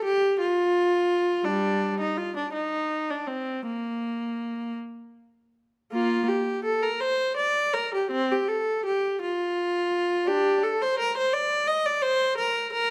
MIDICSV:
0, 0, Header, 1, 2, 480
1, 0, Start_track
1, 0, Key_signature, -2, "major"
1, 0, Tempo, 713436
1, 977, Time_signature, 6, 3, 24, 8
1, 1953, Tempo, 753769
1, 3873, Tempo, 738007
1, 5793, Tempo, 701754
1, 8552, End_track
2, 0, Start_track
2, 0, Title_t, "Viola"
2, 0, Program_c, 0, 41
2, 28, Note_on_c, 0, 67, 85
2, 260, Note_off_c, 0, 67, 0
2, 267, Note_on_c, 0, 65, 83
2, 963, Note_off_c, 0, 65, 0
2, 972, Note_on_c, 0, 55, 60
2, 973, Note_on_c, 0, 62, 77
2, 1312, Note_off_c, 0, 55, 0
2, 1338, Note_off_c, 0, 62, 0
2, 1346, Note_on_c, 0, 63, 63
2, 1462, Note_on_c, 0, 65, 69
2, 1463, Note_off_c, 0, 63, 0
2, 1584, Note_off_c, 0, 65, 0
2, 1590, Note_on_c, 0, 62, 60
2, 1703, Note_on_c, 0, 63, 70
2, 1707, Note_off_c, 0, 62, 0
2, 2063, Note_off_c, 0, 63, 0
2, 2080, Note_on_c, 0, 62, 60
2, 2190, Note_on_c, 0, 60, 59
2, 2195, Note_off_c, 0, 62, 0
2, 2431, Note_off_c, 0, 60, 0
2, 2437, Note_on_c, 0, 58, 60
2, 3141, Note_off_c, 0, 58, 0
2, 3875, Note_on_c, 0, 58, 63
2, 3877, Note_on_c, 0, 65, 78
2, 4097, Note_off_c, 0, 58, 0
2, 4098, Note_off_c, 0, 65, 0
2, 4108, Note_on_c, 0, 67, 69
2, 4346, Note_on_c, 0, 69, 75
2, 4349, Note_off_c, 0, 67, 0
2, 4464, Note_on_c, 0, 70, 68
2, 4465, Note_off_c, 0, 69, 0
2, 4580, Note_on_c, 0, 72, 82
2, 4585, Note_off_c, 0, 70, 0
2, 4816, Note_on_c, 0, 74, 80
2, 4820, Note_off_c, 0, 72, 0
2, 5054, Note_on_c, 0, 70, 78
2, 5056, Note_off_c, 0, 74, 0
2, 5183, Note_off_c, 0, 70, 0
2, 5190, Note_on_c, 0, 67, 66
2, 5299, Note_on_c, 0, 60, 84
2, 5311, Note_off_c, 0, 67, 0
2, 5426, Note_off_c, 0, 60, 0
2, 5430, Note_on_c, 0, 67, 71
2, 5541, Note_on_c, 0, 69, 74
2, 5554, Note_off_c, 0, 67, 0
2, 5784, Note_off_c, 0, 69, 0
2, 5784, Note_on_c, 0, 67, 75
2, 6026, Note_off_c, 0, 67, 0
2, 6030, Note_on_c, 0, 65, 83
2, 6741, Note_off_c, 0, 65, 0
2, 6747, Note_on_c, 0, 62, 70
2, 6753, Note_on_c, 0, 67, 86
2, 6978, Note_off_c, 0, 62, 0
2, 6998, Note_off_c, 0, 67, 0
2, 6998, Note_on_c, 0, 69, 72
2, 7120, Note_off_c, 0, 69, 0
2, 7128, Note_on_c, 0, 72, 79
2, 7243, Note_on_c, 0, 70, 85
2, 7245, Note_off_c, 0, 72, 0
2, 7360, Note_off_c, 0, 70, 0
2, 7368, Note_on_c, 0, 72, 78
2, 7476, Note_on_c, 0, 74, 87
2, 7482, Note_off_c, 0, 72, 0
2, 7710, Note_on_c, 0, 75, 88
2, 7717, Note_off_c, 0, 74, 0
2, 7834, Note_off_c, 0, 75, 0
2, 7835, Note_on_c, 0, 74, 80
2, 7949, Note_on_c, 0, 72, 89
2, 7955, Note_off_c, 0, 74, 0
2, 8191, Note_off_c, 0, 72, 0
2, 8191, Note_on_c, 0, 70, 85
2, 8423, Note_off_c, 0, 70, 0
2, 8431, Note_on_c, 0, 70, 92
2, 8552, Note_off_c, 0, 70, 0
2, 8552, End_track
0, 0, End_of_file